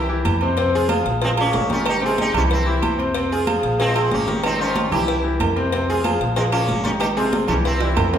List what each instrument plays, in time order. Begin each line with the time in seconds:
Already playing: upright bass C2
0.09 grand piano E3 E4 G4, high conga
0.25 upright bass F2, cowbell, high conga, low agogo, claves
0.41 grand piano C3 C4 C5, high conga, low agogo
0.57 grand piano C3 C4 C5, cowbell, high conga, low agogo
0.73 sitar F4 G#4, high conga
0.89 grand piano F3 F4 G#4, cowbell, high conga, low agogo, claves
1.05 upright bass A#1, cowbell, high conga
1.22 grand piano F3 F4 G#4, sitar G#3 C4, cowbell, low agogo
1.37 grand piano F3 F4 G#4, sitar A#3 C#4, cowbell, high conga, low agogo, claves
1.53 upright bass G#1, cowbell, high conga, low timbale
1.69 grand piano D#3 D#4 G4, sitar C#4 F4, cowbell, high conga
1.86 sitar D#4, cowbell, high conga, low agogo, claves
1.90 sitar G4
2.01 grand piano C3 C4 C5, high conga
2.06 sitar F4 G#4
2.18 sitar D#4 G4, cowbell, high conga, low agogo
2.33 upright bass C2, grand piano E3 E4 G4, sitar C#4 F4, high conga, low conga, low agogo, claves
2.50 sitar C4 E4, cowbell, high conga, low conga
2.66 grand piano E3 E4 G4, high conga
2.82 upright bass F2, cowbell, high conga, low agogo, claves
2.98 grand piano C3 C4 C5, high conga, low agogo
3.15 grand piano C3 C4 C5, cowbell, high conga, low agogo
3.31 sitar F4 G#4, high conga
3.47 grand piano F3 F4 G#4, cowbell, high conga, low agogo, claves
3.62 upright bass A#1, cowbell, high conga
3.79 grand piano F3 F4 G#4, sitar G#3 C4, cowbell, low agogo
3.94 grand piano F3 F4 G#4, cowbell, high conga, low agogo, claves
4.11 upright bass G#1, sitar A#3 C#4, cowbell, high conga
4.27 grand piano D#3 D#4 G4, cowbell, high conga
4.43 sitar C4 D#4, cowbell, high conga, low agogo, claves
4.59 grand piano D#3 D#4 C5, sitar C#4 F4, high conga
4.76 cowbell, high conga, low agogo
4.92 upright bass C2, grand piano E3 E4 G4, sitar E4 G4, high conga, low conga, low agogo, claves
5.08 cowbell, high conga
5.24 grand piano E3 E4 G4, high conga
5.40 upright bass F2, cowbell, high conga, low timbale, low agogo, claves
5.56 grand piano C3 C4 C5, high conga, low agogo
5.72 grand piano C3 C4 C5, cowbell, high conga, low agogo
5.88 sitar F4 G#4, high conga
6.04 grand piano F3 F4 G#4, cowbell, high conga, low agogo, claves
6.20 upright bass A#1, cowbell, high conga
6.36 grand piano F3 F4 G#4, sitar G#3 C4, cowbell, high conga, low agogo
6.52 grand piano F3 F4 G#4, sitar A#3 C#4, cowbell, high conga, low agogo, claves
6.68 upright bass G#1, cowbell, high conga
6.84 grand piano D#3 D#4 G4, sitar C#4 F4, cowbell, high conga
7.00 sitar D#4 G4, cowbell, high conga, low agogo, claves
7.16 grand piano C3 C4 C5, sitar F4 G#4, high conga
7.32 cowbell, high conga, low agogo
7.47 upright bass C2, grand piano E3 E4 G4, sitar C#4 F4, high conga, low conga, low agogo, claves
7.65 sitar C4 E4, cowbell, high conga, low conga
7.81 grand piano E3 E4 G4, high conga, high timbale
7.97 upright bass F2, cowbell, high conga, low timbale, low agogo, claves
8.13 grand piano C3 C4 C5, high conga, low timbale, low agogo